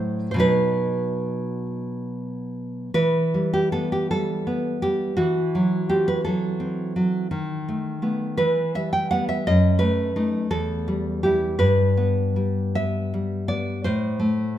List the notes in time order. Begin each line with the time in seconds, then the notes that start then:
Already playing: A2 F#3 E4 C5
0.31 B2 C5
0.36 F#3 D#4 B4
2.94 E3 B4
3.34 G3
3.53 G4
3.72 B3 A4
3.92 G4
4.11 G3 A4
4.47 B3
4.82 G3 G4
5.17 E3 F#4
5.55 F#3
5.89 C4 G4
6.08 B4
6.24 F#3 A4
6.60 C4
6.96 F#3
7.31 D#3
7.68 A3
8.02 A3 B3
8.37 E3 B4
8.75 G3 E5
8.93 G5
9.11 G3 B3 F#5
9.29 E5
9.47 F#2 D#5
9.79 A3 B4
10.16 A3 D#4
10.51 E2 A4
10.88 G3
11.23 G3 E4 G4
11.59 G2 B4
11.97 B3
12.36 G3
12.75 B3 E5
13.14 G3
13.48 B3 D5
13.84 A2 C5
14.20 A3